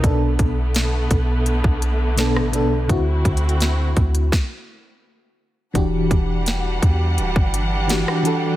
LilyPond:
<<
  \new Staff \with { instrumentName = "FM electric piano" } { \time 4/4 \key e \minor \tempo 4 = 84 <b, b d' a'>4. r4. <b, b d' a'>8 <b, b d' a'>8 | <d c' e' fis'>4. r2 r8 | <e d' fis' g'>4. r4. <e d' fis' g'>8 <e d' fis' a'>8 | }
  \new Staff \with { instrumentName = "String section" } { \time 4/4 \key e \minor <d a b>1 | <c' e' fis'>2 r2 | <e g d' fis''>1 | }
  \new Staff \with { instrumentName = "808-style bass" } { \clef bass \time 4/4 \key e \minor b,,8 b,,4 b,,8. b,,4 a,,16. b,,16. | d,8 d,4 d,8 r2 | e,,8 e,,4 e,8 d,,16 g,,4 r8. | }
  \new DrumStaff \with { instrumentName = "Drums" } \drummode { \time 4/4 <hh bd>8 <hh bd>8 <hh sn>8 <hh bd>8 hh16 bd16 hh8 <hh sn>16 ss16 hh8 | \tuplet 3/2 { <hh bd>16 r16 r16 <hh bd>16 hh16 hh16 } <hh sn>8 <hh bd>16 hh16 <bd sn>4 r4 | <hh bd>8 <hh bd>8 <hh sn>8 <hh bd>8 hh16 bd16 hh8 <hh sn>16 ss16 hh8 | }
>>